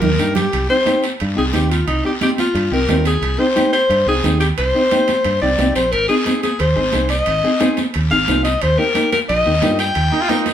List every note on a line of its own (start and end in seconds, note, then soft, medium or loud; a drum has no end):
0.00 0.16 D#2 medium
0.00 0.08 A#3 medium
0.00 0.08 D#4 medium
0.00 0.08 G4 medium
0.00 0.35 A#4 medium
0.00 low conga medium
0.18 0.46 G2 medium
0.18 0.36 A#3 medium
0.18 0.37 D#4 medium
0.18 0.37 G4 medium
0.18 high timbale medium
0.18 short guiro medium
0.35 0.67 G4 medium
0.35 low conga medium
0.35 high timbale medium
0.35 short guiro medium
0.53 0.67 C2 medium
0.53 high timbale medium
0.53 long guiro medium
0.69 0.75 C4 medium
0.69 0.75 D#4 medium
0.69 0.76 G4 medium
0.69 1.01 C5 medium
0.85 1.03 C4 medium
0.85 1.04 D#4 medium
0.85 1.04 G4 medium
0.85 high conga medium
0.85 high timbale medium
0.85 short guiro medium
1.03 high timbale medium
1.03 short guiro medium
1.20 1.35 G2 loud
1.20 high timbale medium
1.20 long guiro medium
1.35 1.51 C2 medium
1.35 1.42 C4 medium
1.35 1.43 D#4 medium
1.35 1.43 G4 medium
1.35 1.45 G#4 medium
1.52 1.82 D#2 medium
1.52 1.71 C4 medium
1.52 1.71 D#4 medium
1.52 1.71 G4 medium
1.52 1.72 G4 medium
1.52 high conga medium
1.52 high timbale medium
1.52 short guiro medium
1.70 1.87 F4 medium
1.70 high timbale medium
1.70 short guiro medium
1.87 2.01 C2 loud
1.87 2.03 D#4 medium
1.87 high timbale medium
1.87 long guiro medium
2.04 2.10 C4 medium
2.04 2.10 D#4 medium
2.04 2.11 G4 medium
2.04 2.13 G4 medium
2.21 2.39 C4 medium
2.21 2.39 D#4 medium
2.21 2.39 G4 medium
2.21 2.30 G4 medium
2.21 high conga medium
2.21 high timbale medium
2.21 short guiro medium
2.38 2.70 F4 medium
2.38 high conga medium
2.38 high timbale medium
2.38 short guiro medium
2.55 2.68 G2 loud
2.55 high timbale medium
2.55 long guiro medium
2.71 2.85 C2 medium
2.71 2.77 C4 medium
2.71 2.78 D#4 medium
2.71 2.78 G4 medium
2.71 3.04 A#4 medium
2.88 3.15 D#2 medium
2.88 3.06 C4 medium
2.88 3.07 D#4 medium
2.88 3.06 G4 medium
2.88 high conga medium
2.88 high timbale medium
2.88 low timbale medium
2.88 short guiro medium
3.05 3.41 G#4 medium
3.05 high timbale medium
3.05 short guiro medium
3.22 3.36 C2 medium
3.22 high timbale medium
3.22 long guiro medium
3.38 3.44 C4 medium
3.38 3.45 D#4 medium
3.38 3.45 G4 medium
3.38 3.72 C5 loud
3.55 3.73 C4 medium
3.55 3.74 D#4 medium
3.55 3.74 G4 medium
3.55 high conga medium
3.55 high timbale medium
3.55 short guiro medium
3.73 4.04 C5 medium
3.73 high timbale medium
3.73 short guiro medium
3.90 4.03 G2 loud
3.90 high timbale medium
3.90 long guiro medium
4.06 4.20 C2 medium
4.06 4.13 C4 medium
4.06 4.13 D#4 medium
4.06 4.13 G4 medium
4.06 4.39 G#4 medium
4.23 4.51 D#2 medium
4.23 4.41 C4 medium
4.23 4.42 D#4 medium
4.23 4.42 G4 medium
4.23 high conga medium
4.23 high timbale medium
4.23 short guiro medium
4.40 4.48 G4 medium
4.40 high timbale medium
4.40 short guiro medium
4.58 4.71 C2 medium
4.58 5.38 C5 loud
4.58 high timbale medium
4.58 long guiro medium
4.74 4.80 C4 medium
4.74 4.80 D#4 medium
4.74 4.80 G4 medium
4.91 5.09 C4 medium
4.91 5.09 D#4 medium
4.91 5.09 G4 medium
4.91 high conga medium
4.91 high timbale medium
4.91 short guiro medium
5.08 high conga medium
5.08 high timbale medium
5.08 short guiro medium
5.24 5.38 G2 loud
5.24 high timbale medium
5.24 long guiro medium
5.42 5.55 C2 medium
5.42 5.48 C4 medium
5.42 5.48 D#4 medium
5.42 5.48 G4 medium
5.42 5.73 D5 medium
5.58 5.74 C2 medium
5.58 5.76 C4 medium
5.58 5.76 D#4 medium
5.58 5.76 G4 medium
5.58 high conga medium
5.58 high timbale medium
5.58 short guiro medium
5.75 5.91 A#1 medium
5.75 5.93 C5 medium
5.75 high timbale medium
5.75 short guiro medium
5.92 6.06 G#1 medium
5.92 6.08 A#4 loud
5.92 high timbale medium
5.92 long guiro medium
6.09 6.15 C4 medium
6.09 6.15 D#4 medium
6.09 6.40 G#4 medium
6.09 6.15 G#4 medium
6.25 6.43 C4 medium
6.25 6.43 D#4 medium
6.25 6.43 G#4 medium
6.25 high conga medium
6.25 high timbale medium
6.25 short guiro medium
6.43 6.62 G#4 medium
6.43 high conga medium
6.43 high timbale medium
6.43 short guiro medium
6.59 6.73 D#2 loud
6.59 7.10 C5 medium
6.59 high timbale medium
6.59 long guiro medium
6.75 6.90 G#1 medium
6.75 6.82 C4 medium
6.75 6.82 D#4 medium
6.75 6.82 G#4 medium
6.92 7.20 C2 medium
6.92 7.11 C4 medium
6.92 7.11 D#4 medium
6.92 7.11 G#4 medium
6.92 high conga medium
6.92 high timbale medium
6.92 short guiro medium
7.09 7.73 D#5 medium
7.09 high timbale medium
7.09 short guiro medium
7.26 7.40 G#1 loud
7.26 high timbale medium
7.26 long guiro medium
7.43 7.49 C4 medium
7.43 7.50 D#4 medium
7.43 7.50 G#4 medium
7.60 7.78 C4 medium
7.60 7.78 D#4 medium
7.60 7.78 G#4 medium
7.60 high conga medium
7.60 high timbale medium
7.60 short guiro medium
7.77 high conga medium
7.77 high timbale medium
7.77 short guiro medium
7.94 8.08 D#2 loud
7.94 high timbale medium
7.94 long guiro medium
8.10 8.25 G#1 medium
8.10 8.17 C4 medium
8.10 8.17 D#4 medium
8.10 8.17 G#4 medium
8.10 8.42 F5 medium
8.27 8.55 C2 loud
8.27 8.45 C4 medium
8.27 8.45 D#4 medium
8.27 8.45 G#4 medium
8.27 high conga medium
8.27 high timbale medium
8.27 low timbale medium
8.27 short guiro medium
8.44 8.63 D#5 medium
8.44 high timbale medium
8.44 short guiro medium
8.61 8.76 D#2 loud
8.61 8.79 C5 medium
8.61 high timbale medium
8.61 long guiro medium
8.77 8.84 A#3 medium
8.77 8.84 D#4 medium
8.77 8.84 G4 medium
8.77 9.12 A#4 medium
8.94 9.12 A#3 medium
8.94 9.12 D#4 medium
8.94 9.13 G4 medium
8.94 high conga medium
8.94 high timbale medium
8.94 short guiro medium
9.12 9.20 A#4 medium
9.12 high conga medium
9.12 high timbale medium
9.12 short guiro medium
9.29 9.43 A#1 loud
9.29 9.76 D#5 medium
9.29 high timbale medium
9.29 long guiro medium
9.45 9.60 D#2 medium
9.45 9.51 A#3 medium
9.45 9.52 D#4 medium
9.45 9.52 G4 medium
9.62 9.89 G2 medium
9.62 9.80 A#3 medium
9.62 9.80 D#4 medium
9.62 9.80 G4 medium
9.62 high conga medium
9.62 high timbale medium
9.62 low timbale medium
9.62 short guiro medium
9.79 10.43 G5 medium
9.79 high timbale medium
9.79 short guiro medium
9.95 10.09 D#2 loud
9.95 high timbale medium
9.95 long guiro medium
10.11 10.18 A#3 medium
10.11 10.23 D#4 medium
10.11 10.18 D#4 medium
10.11 10.18 G4 medium
10.21 10.30 F4 loud
10.28 10.47 A#3 medium
10.28 10.53 D#4 medium
10.28 10.47 D#4 medium
10.28 10.47 F4 medium
10.28 high conga medium
10.28 high timbale medium
10.28 short guiro medium
10.46 high conga medium
10.46 high timbale medium
10.46 short guiro medium